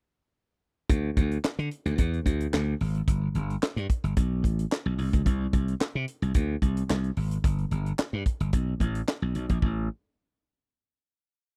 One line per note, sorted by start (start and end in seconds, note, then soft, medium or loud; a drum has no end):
0.89 1.10 D2 loud
0.89 kick loud
0.89 closed hi-hat medium
1.17 1.37 D2 medium
1.17 kick loud
1.17 closed hi-hat medium
1.31 closed hi-hat soft
1.44 muted slap bass stroke soft
1.44 snare loud
1.44 clap medium
1.59 1.68 D3 medium
1.59 closed hi-hat soft
1.71 closed hi-hat medium
1.86 1.95 D2 medium
1.86 closed hi-hat medium
1.98 2.19 E2 loud
1.98 kick loud
1.98 closed hi-hat medium
2.13 closed hi-hat soft
2.26 2.46 D2 medium
2.26 kick medium
2.26 closed hi-hat medium
2.40 closed hi-hat medium
2.53 2.73 D2 medium
2.53 snare medium
2.53 clap medium
2.80 3.01 G#1 medium
2.80 open hi-hat medium
2.95 closed hi-hat medium
3.08 3.28 G1 loud
3.08 kick loud
3.08 closed hi-hat medium
3.35 3.55 G1 medium
3.35 closed hi-hat medium
3.50 closed hi-hat soft
3.63 snare loud
3.63 clap medium
3.76 3.86 G2 loud
3.76 closed hi-hat soft
3.90 kick loud
3.90 closed hi-hat medium
4.04 4.13 G1 medium
4.04 closed hi-hat medium
4.16 4.44 B1 loud
4.16 kick loud
4.16 closed hi-hat medium
4.44 4.64 A1 medium
4.44 kick medium
4.44 closed hi-hat medium
4.59 closed hi-hat medium
4.72 snare loud
4.72 clap medium
4.86 4.95 B1 medium
4.98 5.09 C2 medium
4.98 open hi-hat medium
5.13 5.23 C#2 medium
5.13 kick medium
5.13 closed hi-hat medium
5.26 5.46 C2 loud
5.26 kick loud
5.26 closed hi-hat medium
5.53 5.73 C2 loud
5.53 kick loud
5.53 closed hi-hat medium
5.68 closed hi-hat soft
5.80 muted slap bass stroke medium
5.80 snare loud
5.80 clap medium
5.95 6.05 C3 medium
6.08 closed hi-hat medium
6.22 6.32 C2 loud
6.22 closed hi-hat medium
6.34 6.55 D2 loud
6.34 kick loud
6.34 closed hi-hat medium
6.62 6.82 C2 loud
6.62 kick medium
6.62 closed hi-hat medium
6.77 closed hi-hat medium
6.90 7.10 C2 medium
6.90 snare loud
6.90 clap medium
7.04 closed hi-hat soft
7.17 7.37 G#1 medium
7.17 open hi-hat medium
7.31 closed hi-hat medium
7.44 7.64 G1 loud
7.44 kick loud
7.44 closed hi-hat medium
7.58 closed hi-hat soft
7.71 7.91 G1 medium
7.71 closed hi-hat medium
7.86 closed hi-hat soft
7.99 snare loud
7.99 clap medium
8.13 8.22 G2 medium
8.26 kick loud
8.26 closed hi-hat medium
8.40 8.50 G1 medium
8.40 closed hi-hat medium
8.53 8.73 B1 medium
8.53 kick loud
8.53 closed hi-hat medium
8.80 9.00 A1 medium
8.80 kick medium
8.80 closed hi-hat medium
8.95 closed hi-hat medium
9.08 snare loud
9.08 clap medium
9.22 9.32 B1 medium
9.35 9.46 B1 medium
9.35 closed hi-hat medium
9.49 9.59 A#1 medium
9.49 kick medium
9.49 closed hi-hat medium
9.62 9.88 A1 loud
9.62 kick loud